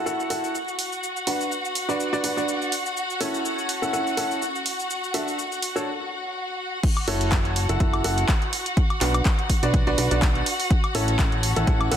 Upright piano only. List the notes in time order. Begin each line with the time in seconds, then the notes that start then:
0.06 E4 F#4 A4 F#5
0.30 E4 F#4 A4 F#5
1.27 D4 F#4 B4 F#5
1.89 D4 F#4 B4 D5
2.13 D4 F#4 B4 D5
2.24 D4 F#4 B4 D5
2.37 D4 F#4 B4 D5
3.21 C#4 E4 A4 C#5
3.82 C#4 E4 A4 F#5
3.93 C#4 E4 A4 F#5
4.17 C#4 E4 A4 F#5
5.14 D4 F#4 A4 E5
5.76 D4 F#4 A4 C#5
7.08 E4 F#4 A4 C#5
7.69 E4 F#4 A4 F#5
7.80 E4 F#4 A4 F#5
8.04 E4 F#4 A4 F#5
9.01 D4 F#4 B4 F#5
9.63 D4 F#4 B4 D5
9.87 D4 F#4 B4 D5
9.98 D4 F#4 B4 D5
10.11 D4 F#4 B4 D5
10.95 C#4 E4 A4 C#5
11.56 C#4 E4 A4 F#5
11.67 C#4 E4 A4 F#5
11.91 C#4 E4 A4 F#5